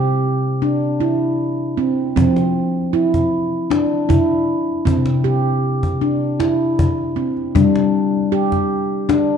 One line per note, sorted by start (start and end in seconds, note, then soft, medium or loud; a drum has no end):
0.00 2.13 C3 medium
0.00 0.62 G4 medium
0.62 1.01 D4 medium
1.00 1.78 E4 medium
1.77 2.15 C4 medium
2.16 4.82 F3 medium
2.16 2.93 C4 medium
2.16 cajon bass soft
2.36 cajon slap soft
2.93 3.70 E4 medium
2.93 cajon slap soft
3.14 cajon bass soft
3.70 4.09 D4 medium
3.70 cajon slap medium
4.09 4.86 E4 medium
4.09 cajon bass medium
4.85 7.51 C3 medium
4.85 5.24 C4 medium
4.85 cajon bass medium
5.06 cajon slap soft
5.24 6.01 G4 medium
5.83 cajon bass soft
6.01 6.40 D4 medium
6.01 cajon slap soft
6.40 7.17 E4 medium
6.40 cajon slap soft
6.79 cajon bass medium
6.98 cajon slap soft
7.16 7.55 C4 medium
7.37 cajon slap soft
7.55 9.37 G3 medium
7.55 8.32 D4 medium
7.55 cajon bass medium
7.75 cajon slap soft
8.32 9.09 G4 medium
8.52 cajon bass soft
8.52 cajon slap soft
9.09 9.37 D4 medium
9.09 cajon slap medium